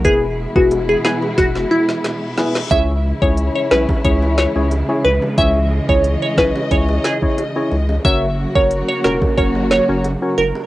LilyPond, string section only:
\new Staff \with { instrumentName = "String section" } { \clef bass \time 4/4 \key cis \dorian \tempo 4 = 90 << { e'1 | e'1 | dis''1 | fis'1 | } \\ { <b, e gis>1 | <cis e gis>1~ | <cis e gis>1 | <cis fis ais>1 | } >> }